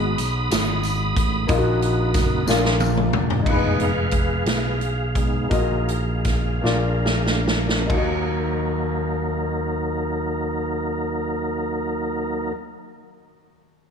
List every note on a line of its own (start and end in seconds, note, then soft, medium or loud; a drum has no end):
0.00 0.14 G#1 loud
0.00 0.47 G#2 medium
0.00 1.43 B3 medium
0.00 1.44 D#4 medium
0.00 1.45 F#4 medium
0.00 1.46 G#4 medium
0.00 1.47 D#5 medium
0.00 2.77 B5 medium
0.00 2.76 D#6 loud
0.18 0.49 B1 medium
0.18 closed hi-hat medium
0.18 tambourine medium
0.51 1.12 G#1 loud
0.51 snare loud
0.51 closed hi-hat loud
0.51 tambourine loud
0.83 closed hi-hat medium
0.83 tambourine medium
1.16 1.47 A1 medium
1.16 kick loud
1.16 closed hi-hat medium
1.47 2.16 A#1 loud
1.47 2.43 A#2 medium
1.47 2.44 A#3 medium
1.47 2.43 A#3 medium
1.47 2.43 D#4 medium
1.47 2.48 D#4 medium
1.47 2.44 F#4 medium
1.47 kick loud
1.47 closed hi-hat medium
1.47 tambourine soft
1.51 1.57 F4 medium
1.58 2.52 F#4 medium
1.82 closed hi-hat medium
2.14 2.45 F#1 medium
2.14 kick loud
2.14 snare soft
2.14 closed hi-hat medium
2.14 tambourine medium
2.46 3.09 A#1 loud
2.46 3.42 A#2 medium
2.46 3.42 F3 medium
2.46 3.45 A#3 medium
2.46 3.41 A#3 medium
2.46 3.42 D4 medium
2.46 3.46 D4 medium
2.46 snare medium
2.46 tambourine loud
2.50 3.46 F4 medium
2.65 snare medium
2.80 high tom medium
2.80 tambourine medium
2.97 mid tom medium
3.13 3.44 E1 medium
3.13 mid tom loud
3.30 floor tom loud
3.42 4.42 F1 medium
3.42 5.45 G#3 medium
3.42 5.46 D#4 medium
3.46 3.91 G#3 soft
3.46 3.91 B3 soft
3.46 3.92 D#4 medium
3.46 5.48 F4 soft
3.46 3.80 G#4 medium
3.46 3.80 B4 medium
3.46 3.78 D#5 medium
3.46 kick loud
3.46 crash medium
3.51 5.49 B4 medium
3.80 4.47 G#4 medium
3.80 4.77 B4 medium
3.80 4.46 F5 loud
3.80 closed hi-hat soft
4.11 kick medium
4.11 closed hi-hat medium
4.46 5.47 B1 medium
4.46 7.43 G#4 medium
4.46 7.42 F5 medium
4.46 snare medium
4.46 closed hi-hat medium
4.81 closed hi-hat soft
5.15 5.48 G#3 soft
5.15 5.48 B3 soft
5.15 5.48 D#4 soft
5.15 kick medium
5.15 closed hi-hat medium
5.49 6.60 A#1 medium
5.49 6.60 A#2 medium
5.49 6.00 F#3 soft
5.49 6.60 A#3 medium
5.49 6.63 D#4 medium
5.49 6.64 F#4 medium
5.49 6.00 A#4 soft
5.49 6.65 D#5 medium
5.49 kick medium
5.49 closed hi-hat medium
5.53 6.01 D#4 medium
5.88 closed hi-hat soft
6.25 kick medium
6.25 snare soft
6.25 closed hi-hat medium
6.62 7.86 A#1 medium
6.62 7.86 A#2 medium
6.62 7.86 F3 soft
6.62 7.80 A#3 medium
6.62 7.89 D4 medium
6.62 7.86 D4 medium
6.62 7.90 F4 medium
6.62 7.86 A#4 soft
6.62 7.90 D5 medium
6.62 snare soft
7.06 snare medium
7.26 snare medium
7.48 snare medium
7.69 snare medium
7.82 12.43 A#3 medium
7.87 12.51 D#2 medium
7.87 12.52 D#2 medium
7.87 12.52 F#3 medium
7.87 12.49 D#4 medium
7.87 12.52 D#4 medium
7.87 12.52 A#4 medium
7.87 kick medium
7.87 crash medium
7.91 12.53 A#3 medium
7.91 12.54 F#4 medium
7.97 12.59 D#5 medium